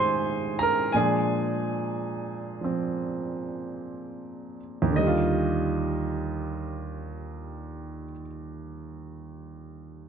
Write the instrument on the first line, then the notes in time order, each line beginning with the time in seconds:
grand piano
Already playing: G#2 D#3 G#3 C4 G4 G#4 C5 G5 G#5 C6
0.59 A#4 A#5
0.92 A#2 F3 G#3 D4 G#5
0.97 G#4
2.61 F3 C4
4.82 D#2
4.90 D3
4.96 G3 D#5
5.07 F4